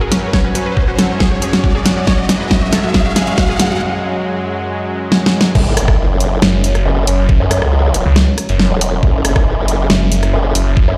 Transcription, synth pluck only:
0.01 0.09 G#4 medium
0.12 0.20 F#4 medium
0.23 0.31 F#4 medium
0.33 0.42 C#5 loud
0.44 0.52 F#4 medium
0.55 0.63 F#4 medium
0.66 0.74 B4 medium
0.77 0.85 F#4 medium
0.88 0.96 F#4 medium
0.98 1.07 A4 medium
1.10 1.18 F#4 medium
1.20 1.29 G#4 medium
1.31 1.39 F#4 medium
1.42 1.50 G#4 medium
1.53 1.61 F#4 medium
1.64 1.72 F#4 medium
1.75 1.83 G#4 medium
1.85 1.94 F#4 medium
1.97 2.04 F#4 medium
2.07 2.15 C#5 loud
2.18 2.26 F#4 medium
2.29 2.37 F#4 medium
2.40 2.48 B4 medium
2.51 2.59 F#4 medium
2.62 2.70 F#4 medium
2.73 2.81 A4 medium
2.84 2.91 F#4 medium
2.94 3.03 G#4 medium
3.05 3.13 F#4 medium
3.16 3.24 G#4 medium
3.27 3.35 F#4 medium
3.38 3.46 F#4 medium
3.49 3.57 G#4 medium
3.60 3.68 F#4 medium
3.71 3.79 F#4 medium

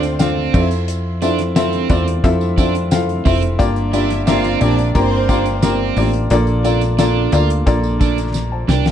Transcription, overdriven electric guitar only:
0.20 0.68 C4 medium
1.22 1.38 D4 medium
1.56 1.88 C4 medium
1.90 2.06 C4 medium
2.58 2.74 D4 medium
3.25 3.41 C4 medium
3.93 4.09 D4 medium
4.27 4.59 C4 medium
4.61 4.77 C4 medium
5.29 5.45 D4 medium
5.63 6.11 C4 medium
6.65 6.81 D4 medium
6.99 7.31 D4 medium
7.32 7.49 F4 medium
8.01 8.17 D4 medium
8.69 8.85 D4 medium

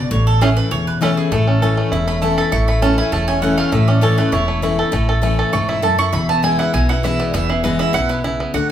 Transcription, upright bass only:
0.11 0.58 A1 loud
0.71 1.18 E1 medium
1.32 1.78 A1 loud
1.92 2.38 E1 medium
2.52 2.99 A1 medium
3.12 3.59 E1 medium
3.72 4.19 A1 loud
4.32 4.79 E1 loud
4.93 5.40 A1 loud
5.53 6.00 E1 medium
6.13 6.60 E1 medium
6.74 7.20 B1 medium
7.34 7.80 E1 loud
7.94 8.40 B1 medium
8.54 8.72 D2 loud

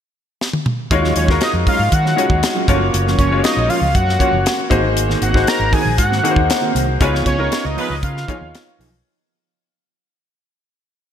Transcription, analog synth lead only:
1.17 1.28 C#5 medium
1.42 1.53 D#5 medium
1.68 1.95 F5 loud
1.93 2.69 F#5 loud
3.18 3.42 C#5 medium
3.44 3.71 D#5 medium
3.69 3.95 F5 loud
3.95 4.67 F#5 loud
5.22 5.49 F#5 medium
5.48 5.74 A#5 loud
5.73 5.97 G#5 medium
5.98 6.71 F#5 medium
7.27 7.67 C#5 medium
7.65 7.90 D#5 medium
7.91 7.96 D#5 medium
8.04 8.76 F5 loud

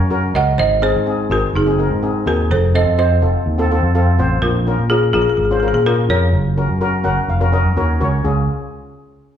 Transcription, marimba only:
0.00 0.31 A#4 medium
0.00 0.39 C#5 loud
0.35 0.57 D#5 medium
0.35 0.60 F#5 loud
0.58 0.81 C5 medium
0.58 0.81 D#5 loud
0.82 1.27 G#4 medium
0.82 1.32 C5 loud
1.31 1.53 F#4 medium
1.31 1.56 A#4 loud
1.56 2.23 D#4 medium
1.56 2.29 G#4 medium
2.27 2.49 F#4 medium
2.27 2.51 A#4 medium
2.51 2.73 A4 medium
2.51 2.74 C5 medium
2.75 2.97 C5 medium
2.75 2.98 D#5 loud
2.99 3.43 C5 medium
2.99 3.43 D#5 medium
4.42 4.87 F4 medium
4.42 4.86 A#4 medium
4.90 5.12 F4 medium
4.90 5.12 G#4 medium
5.13 5.21 F4 medium
5.13 5.21 G#4 loud
5.22 5.28 G#4 medium
5.30 5.36 G#4 medium
5.37 5.44 G#4 medium
5.45 5.51 G#4 medium
5.53 5.59 G#4 soft
5.60 5.67 G#4 medium
5.68 5.73 G#4 medium
5.74 5.81 G#4 medium
5.86 5.97 F4 medium
5.86 5.97 A#4 loud
6.10 7.73 A#4 medium
6.10 7.73 C#5 loud

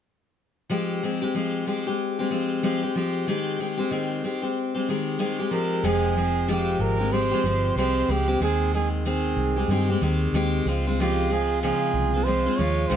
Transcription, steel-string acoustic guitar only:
0.70 1.01 F3 medium
0.70 1.02 G#3 medium
0.70 1.03 C4 medium
0.70 1.03 G4 medium
1.03 1.22 F3 soft
1.03 1.22 G#3 medium
1.03 1.21 C4 medium
1.03 1.20 G4 medium
1.22 1.34 G#3 soft
1.22 1.34 C4 soft
1.22 1.35 G4 soft
1.34 1.65 F3 medium
1.34 1.66 G#3 medium
1.34 1.66 C4 medium
1.34 1.67 G4 medium
1.66 1.86 F3 soft
1.66 1.86 G#3 medium
1.66 1.86 C4 medium
1.66 1.86 G4 medium
1.87 2.19 G#3 soft
1.87 2.19 C4 soft
1.87 2.18 G4 soft
2.19 2.30 G#3 soft
2.19 2.30 C4 soft
2.19 2.31 G4 soft
2.30 2.62 F3 medium
2.30 2.62 G#3 medium
2.30 2.63 C4 medium
2.30 2.64 G4 medium
2.63 2.82 F3 medium
2.63 2.83 G#3 medium
2.63 2.82 C4 medium
2.63 2.81 G4 medium
2.82 2.95 G#3 soft
2.82 2.95 C4 soft
2.82 2.95 G4 soft
2.95 3.26 F3 medium
2.95 3.27 G#3 medium
2.95 3.27 C4 medium
2.95 3.28 G4 medium
3.27 3.58 D#3 medium
3.27 3.59 G#3 medium
3.27 3.60 C4 medium
3.27 3.60 G4 medium
3.59 3.78 D#3 soft
3.59 3.79 G#3 soft
3.59 3.78 C4 medium
3.59 3.76 G4 medium
3.77 3.90 G#3 soft
3.77 3.91 C4 soft
3.77 3.91 G4 soft
3.91 4.22 D#3 medium
3.91 4.23 G#3 medium
3.91 4.23 C4 medium
3.91 4.24 G4 medium
4.24 4.43 D#3 soft
4.24 4.43 G#3 soft
4.24 4.42 C4 medium
4.24 4.41 G4 medium
4.42 4.76 G#3 soft
4.42 4.74 C4 soft
4.42 4.73 G4 soft
4.75 4.88 G#3 soft
4.75 4.88 C4 soft
4.75 4.88 G4 soft
4.89 5.18 D#3 medium
4.89 5.18 G#3 medium
4.89 5.19 C4 medium
4.89 5.20 G4 medium
5.19 5.39 D#3 medium
5.19 5.39 G#3 medium
5.19 5.39 C4 medium
5.19 5.38 G4 medium
5.39 5.51 G#3 soft
5.39 5.52 C4 soft
5.39 5.52 G4 soft
5.51 5.83 F3 medium
5.51 5.83 G#3 medium
5.51 5.84 C4 medium
5.51 5.85 G4 medium
5.84 6.16 F2 medium
5.84 6.16 C3 medium
5.84 6.15 F3 medium
5.84 6.16 G#3 medium
5.84 6.17 C4 medium
6.16 6.47 F3 soft
6.16 6.47 G#3 medium
6.16 6.48 C4 medium
6.47 6.99 F2 medium
6.47 7.00 C3 medium
6.47 7.00 F3 medium
6.47 7.00 G#3 medium
6.47 6.99 C4 medium
6.47 6.98 G4 medium
6.99 7.10 F3 soft
6.99 7.11 G#3 soft
6.99 7.11 C4 soft
6.99 7.12 G4 soft
7.11 7.31 F3 soft
7.11 7.32 G#3 medium
7.11 7.32 C4 soft
7.11 7.30 G4 medium
7.31 7.43 F3 soft
7.31 7.44 G#3 soft
7.31 7.45 C4 soft
7.31 7.44 G4 soft
7.45 7.77 F3 medium
7.45 7.77 G#3 medium
7.45 7.77 C4 medium
7.45 7.78 G4 medium
7.77 8.09 F2 medium
7.77 8.09 C3 medium
7.77 8.07 F3 medium
7.77 8.08 G#3 medium
7.77 8.09 C4 medium
7.77 8.10 G4 medium
8.08 8.28 F3 soft
8.08 8.28 G#3 medium
8.08 8.27 C4 medium
8.08 8.26 G4 medium
8.28 8.40 F3 soft
8.28 8.40 G#3 soft
8.28 8.41 C4 soft
8.28 8.41 G4 medium
8.41 8.73 D#3 medium
8.41 8.73 G#3 medium
8.41 8.73 C4 medium
8.74 9.04 D#3 medium
8.74 9.05 G#3 medium
8.74 9.06 C4 medium
9.05 9.56 D#3 medium
9.05 9.57 G#3 medium
9.05 9.57 C4 medium
9.56 9.70 G#3 soft
9.56 9.70 C4 soft
9.56 9.69 G4 soft
9.70 9.89 D#3 medium
9.70 9.89 G#3 medium
9.70 9.88 C4 medium
9.70 9.88 G4 medium
9.89 10.01 G#3 soft
9.89 10.02 C4 soft
9.89 10.01 G4 medium
10.01 10.33 D#3 medium
10.01 10.34 G#3 medium
10.01 10.34 C4 medium
10.01 10.34 G4 medium
10.34 10.66 D#3 medium
10.34 10.66 G#3 medium
10.34 10.66 C4 medium
10.34 10.67 G4 medium
10.66 10.85 F3 medium
10.66 10.85 G#3 medium
10.66 10.86 C4 medium
10.66 10.85 F4 medium
10.87 10.99 G#3 soft
10.87 10.99 C4 soft
10.87 10.98 F4 medium
10.99 11.31 C#3 medium
10.99 11.28 F3 medium
10.99 11.30 G#3 medium
10.99 11.31 C4 medium
10.99 11.31 F4 medium
11.30 11.62 F3 medium
11.30 11.62 G#3 medium
11.30 11.63 C4 medium
11.30 11.63 F4 medium
11.63 12.14 C#3 medium
11.63 12.14 F3 medium
11.63 12.14 G#3 medium
11.63 12.14 C4 medium
11.63 12.13 F4 medium
12.14 12.25 G#3 soft
12.14 12.26 C4 soft
12.14 12.26 F4 soft
12.26 12.45 F3 medium
12.26 12.46 G#3 medium
12.26 12.45 C4 medium
12.26 12.44 F4 medium
12.46 12.57 G#3 soft
12.46 12.59 C4 soft
12.46 12.58 F4 medium
12.58 12.90 F3 medium
12.58 12.90 G#3 medium
12.58 12.91 F4 medium
12.90 12.96 C#3 medium
12.90 12.96 F3 medium
12.90 12.96 G#3 medium
12.90 12.96 C4 medium
12.90 12.96 F4 medium

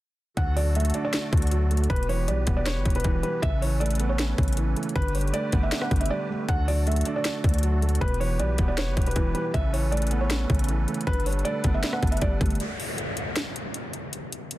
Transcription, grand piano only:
0.37 1.31 D3 medium
0.56 1.50 F#3 medium
0.75 1.69 A3 medium
0.94 1.90 D4 loud
1.14 1.90 D5 medium
1.33 1.90 D3 medium
1.52 1.90 F#3 medium
1.71 1.90 A3 medium
1.90 2.84 B2 medium
2.09 3.03 E3 medium
2.28 3.22 G3 medium
2.47 3.43 B3 loud
2.66 3.43 B4 medium
2.85 3.43 B2 medium
3.05 3.43 E3 loud
3.24 3.43 G3 medium
3.43 4.37 C#3 medium
3.62 4.56 E3 medium
3.81 4.75 A3 medium
4.00 4.96 B3 loud
4.19 4.96 C#4 medium
4.38 4.96 C#3 medium
4.57 4.96 E3 medium
4.77 4.96 A3 medium
4.96 5.90 D3 medium
5.15 6.09 G3 medium
5.34 6.28 A3 medium
5.53 6.49 B3 loud
5.72 6.48 D4 medium
5.91 6.47 D3 medium
6.10 6.48 G3 medium
6.29 6.48 A3 medium
6.48 7.43 D3 medium
6.68 7.62 F#3 medium
6.87 7.81 A3 medium
7.06 8.01 D4 loud
7.25 8.01 D5 medium
7.44 8.01 D3 medium
7.63 8.01 F#3 medium
7.82 8.01 A3 medium
8.20 9.14 E3 medium
8.39 9.33 G3 medium
8.59 9.54 B3 loud
8.78 9.54 B4 medium
8.97 9.54 B2 medium
9.16 9.54 E3 loud
9.35 9.54 G3 medium
9.73 10.67 E3 medium
9.92 10.86 A3 medium
10.11 11.07 B3 loud
10.31 11.07 C#4 medium
10.50 11.07 C#3 medium
10.69 11.07 E3 medium
10.88 11.07 A3 medium
11.07 12.01 D3 medium
11.26 12.20 G3 medium
11.45 12.39 A3 medium
11.64 12.60 B3 loud
11.83 12.60 D4 medium
12.02 12.60 D3 medium
12.22 12.60 G3 loud
12.41 12.60 A3 medium

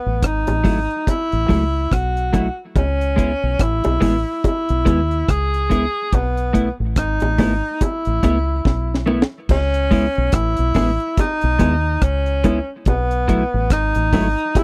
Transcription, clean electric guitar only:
0.64 0.78 F#3 medium
0.64 0.78 A3 medium
0.64 0.79 E4 medium
1.48 1.63 F#3 medium
1.48 1.63 A3 medium
1.48 1.63 E4 medium
2.33 2.47 F#3 medium
2.33 2.47 A3 medium
2.33 2.48 E4 medium
3.16 3.31 G#3 medium
3.16 3.31 B3 medium
3.16 3.32 E4 medium
4.00 4.15 G#3 medium
4.00 4.15 B3 medium
4.00 4.16 E4 medium
4.85 5.00 G#3 medium
4.85 5.00 B3 medium
4.85 5.00 E4 medium
5.70 5.84 G#3 medium
5.70 5.84 B3 medium
5.70 5.85 E4 medium
6.53 6.68 A3 medium
6.53 6.68 B3 medium
6.53 6.68 E4 medium
7.38 7.53 A3 medium
7.38 7.53 B3 medium
7.38 7.53 E4 medium
8.23 8.37 A3 medium
8.23 8.37 B3 medium
8.23 8.38 E4 medium
9.06 9.21 A3 medium
9.06 9.21 B3 medium
9.06 9.21 E4 medium
9.91 10.05 G#3 medium
9.91 10.05 B3 medium
9.91 10.06 E4 medium
10.75 10.89 G#3 medium
10.75 10.90 B3 loud
10.75 10.90 E4 loud
11.59 11.73 G#3 medium
11.59 11.74 B3 medium
11.59 11.74 E4 medium
12.44 12.58 G#3 medium
12.44 12.58 B3 medium
12.44 12.59 E4 loud
13.28 13.42 F#3 medium
13.28 13.42 A3 medium
13.28 13.43 E4 medium
14.13 14.27 F#3 medium
14.13 14.27 A3 medium
14.13 14.27 E4 medium

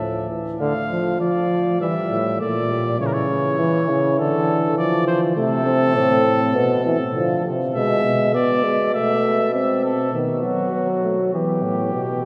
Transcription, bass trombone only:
0.00 0.29 A2 medium
0.60 0.74 D3 medium
0.90 1.20 F3 medium
1.21 1.79 F3 medium
1.81 1.94 E3 medium
2.10 2.42 A2 medium
2.40 3.01 A#2 medium
2.99 3.58 C#3 medium
3.59 3.90 E3 medium
3.89 4.20 C#3 medium
4.19 4.78 D3 medium
4.79 5.36 F3 medium
5.37 5.97 C3 medium
5.96 6.56 A2 medium
6.55 6.94 B2 medium
7.15 7.43 D3 medium
7.45 7.74 C3 medium
7.75 8.04 B2 medium
8.05 10.10 B2 medium
10.13 10.45 D#3 medium
10.43 10.72 F#3 medium
10.73 11.32 F#3 medium
11.33 11.64 E3 medium
11.63 11.94 A2 medium
11.93 12.25 B2 medium

